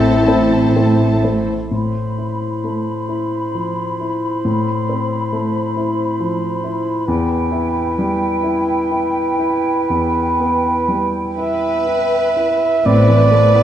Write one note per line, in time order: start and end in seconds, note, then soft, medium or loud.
0.00 1.47 A1 medium
0.00 1.47 A2 medium
0.00 1.71 A2 soft
0.00 0.27 A3 soft
0.00 0.28 C4 soft
0.00 1.35 C4 medium
0.00 1.47 C4 medium
0.00 0.28 E4 soft
0.00 1.39 E4 soft
0.00 1.47 E4 medium
0.00 1.48 A4 soft
0.00 1.47 C5 medium
0.00 1.36 E5 medium
0.00 1.22 A5 medium
0.27 0.72 A3 soft
0.27 0.72 C4 soft
0.27 0.72 E4 soft
0.76 1.20 A3 soft
0.76 1.21 C4 soft
0.76 1.21 E4 soft
1.24 1.68 A3 soft
1.24 1.68 C4 soft
1.24 1.68 E4 soft
1.71 4.42 A2 soft
1.71 7.05 E4 soft
1.71 7.08 C5 soft
1.71 7.04 B5 soft
2.18 2.92 E4 soft
2.64 3.37 A3 soft
3.09 3.82 E4 soft
3.54 4.00 F3 soft
4.00 4.72 E4 soft
4.45 7.04 A2 soft
4.89 5.59 C4 soft
5.33 6.03 A3 soft
5.77 6.47 E4 soft
6.20 6.64 F3 soft
6.64 7.08 E4 soft
7.06 9.85 E2 soft
7.06 12.47 E4 soft
7.06 11.22 B4 medium
7.06 12.47 G5 medium
7.52 8.25 E4 soft
7.99 8.72 G3 soft
8.43 8.90 E4 soft
8.91 9.37 E4 soft
9.39 10.18 E4 soft
9.90 12.81 E2 soft
10.40 11.18 B3 soft
10.88 11.67 G3 soft
11.38 11.85 E4 soft
11.38 12.82 B4 medium
11.38 12.88 E5 medium
12.37 12.85 E4 soft
12.85 13.63 A1 medium
12.85 13.63 A2 soft
12.85 13.07 B3 medium
12.85 13.07 C4 medium
12.85 13.63 B4 medium
12.85 13.63 D5 medium
13.08 13.46 E3 soft
13.08 13.32 A3 soft
13.08 13.31 C4 soft
13.08 13.32 E4 soft
13.31 13.63 A3 soft
13.31 13.55 B3 soft
13.31 13.54 C4 soft
13.31 13.56 C4 soft
13.55 13.63 A3 soft
13.55 13.63 B3 soft
13.55 13.63 C4 soft
13.55 13.63 E4 soft